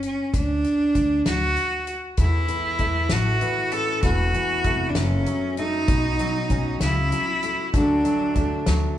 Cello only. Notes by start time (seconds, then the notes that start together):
0.05 C#4
0.35 D4
1.27 F#4
2.20 E4
3.12 F#4
3.72 A4
4.03 F#4
4.88 D4
4.96 C#4
5.58 D#4
6.82 E4
7.75 D4